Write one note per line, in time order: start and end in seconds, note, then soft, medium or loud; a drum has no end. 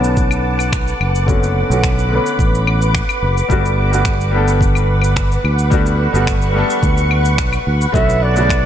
0.00 0.92 B1 medium
0.00 1.26 D3 medium
0.00 1.28 A3 medium
0.00 1.28 B3 medium
0.00 1.29 C#4 medium
0.00 1.30 F#4 medium
0.00 1.27 B4 medium
0.00 8.66 B4 medium
0.00 3.46 F#5 medium
0.00 1.26 A5 medium
0.00 5.68 D6 medium
0.00 cabasa medium
0.17 kick medium
0.17 cabasa medium
0.31 cabasa soft
0.31 claves medium
0.59 cabasa medium
0.59 claves medium
0.73 finger snap medium
0.73 kick loud
0.73 cabasa medium
0.88 cabasa medium
1.00 1.62 F#1 medium
1.00 claves medium
1.15 cabasa medium
1.26 1.66 D3 medium
1.26 1.66 A3 medium
1.26 1.66 B3 medium
1.26 1.67 C#4 medium
1.26 1.67 F#4 medium
1.26 3.48 B5 medium
1.26 kick loud
1.26 cabasa medium
1.43 cabasa soft
1.69 2.18 B1 medium
1.69 2.07 D3 medium
1.69 2.08 A3 medium
1.69 2.08 B3 medium
1.69 2.09 C#4 medium
1.69 2.09 F#4 medium
1.69 cabasa medium
1.84 finger snap medium
1.84 kick loud
1.84 cabasa medium
1.99 cabasa soft
2.09 3.46 D3 medium
2.09 3.46 A3 medium
2.09 3.47 B3 medium
2.14 3.48 C#4 medium
2.14 3.49 B4 medium
2.26 cabasa medium
2.39 3.01 A1 medium
2.39 kick medium
2.39 cabasa medium
2.55 cabasa soft
2.67 claves medium
2.82 cabasa medium
2.95 finger snap medium
2.95 kick loud
2.95 cabasa medium
3.09 cabasa soft
3.09 claves medium
3.22 3.41 F#1 medium
3.38 cabasa medium
3.48 5.37 G1 medium
3.48 3.88 G3 medium
3.48 3.88 A3 medium
3.48 3.89 B3 medium
3.48 3.89 D4 medium
3.48 3.90 F#4 loud
3.48 8.66 F#5 medium
3.48 kick loud
3.48 cabasa medium
3.65 cabasa soft
3.91 4.30 G3 medium
3.91 4.30 A3 medium
3.91 4.30 B3 medium
3.91 4.31 D4 medium
3.91 4.31 F#4 medium
3.91 cabasa medium
4.05 finger snap medium
4.05 kick loud
4.05 cabasa medium
4.21 cabasa soft
4.31 5.68 G3 medium
4.31 5.69 A3 medium
4.31 5.69 B3 medium
4.36 5.70 D4 medium
4.36 5.71 A4 loud
4.48 cabasa medium
4.61 kick loud
4.61 cabasa medium
4.75 cabasa medium
4.75 claves medium
5.02 cabasa medium
5.02 claves medium
5.16 finger snap loud
5.16 kick loud
5.16 cabasa medium
5.32 cabasa soft
5.44 6.06 D2 medium
5.44 claves medium
5.59 cabasa medium
5.70 6.10 G3 medium
5.70 6.10 A3 medium
5.70 6.11 B3 medium
5.70 6.11 D4 medium
5.70 6.11 F#4 medium
5.70 7.91 C#6 medium
5.70 kick loud
5.70 cabasa medium
5.86 cabasa medium
6.13 6.62 G1 medium
6.13 6.50 G3 medium
6.13 6.52 A3 medium
6.13 6.52 B3 medium
6.13 6.53 D4 medium
6.13 6.53 F#4 medium
6.13 cabasa medium
6.27 finger snap medium
6.27 kick loud
6.27 cabasa medium
6.42 cabasa soft
6.52 7.89 G3 medium
6.52 7.90 A3 medium
6.52 7.91 B3 medium
6.57 7.92 D4 medium
6.57 7.93 A4 medium
6.70 cabasa medium
6.83 7.38 D2 medium
6.83 kick loud
6.83 cabasa medium
6.97 cabasa medium
7.11 claves medium
7.25 cabasa medium
7.38 7.57 B1 medium
7.38 finger snap medium
7.38 kick loud
7.38 cabasa medium
7.53 cabasa soft
7.53 claves medium
7.67 7.85 D2 medium
7.81 cabasa medium
7.92 8.66 B1 medium
7.92 8.32 D3 medium
7.92 8.32 A3 medium
7.92 8.33 B3 medium
7.92 8.33 C#4 medium
7.92 8.33 F#4 medium
7.92 8.24 E5 loud
7.92 8.66 A5 medium
7.92 8.66 D6 medium
7.92 kick loud
7.92 cabasa medium
8.10 cabasa medium
8.23 8.66 D5 loud
8.34 8.66 C#3 medium
8.34 8.66 D3 medium
8.34 8.66 A3 medium
8.34 8.66 B3 medium
8.34 8.66 F#4 medium
8.34 cabasa medium
8.50 finger snap medium
8.50 kick loud
8.50 cabasa medium